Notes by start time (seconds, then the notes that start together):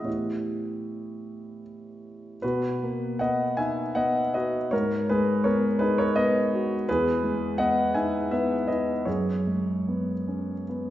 0.02 A2 E3 B3 E4 G4 C#5
2.42 B2 F#4 B4
2.83 A#3
3.19 B3 D#5 F#5
3.57 D#4 E5 G#5
3.95 B3 D#5 F#5
4.34 F#4 B4 D#5
4.71 G#2 A#4 C#5
5.09 G#3 G#4 B4
5.44 B3 A#4 C#5
5.79 D#4 G#4 B4
5.98 A#4 C#5
6.16 B3 B4 D#5
6.53 F#4
6.89 E2 G#4 B4
7.24 G#3
7.58 B3 D#5 F#5
7.94 D#4 E5 G#5
8.31 B3 B4 E5
8.68 E4 B4 D#5
9.05 F#2 G#4 C#5
9.47 G#3
9.88 B3
10.28 C#4
10.69 B3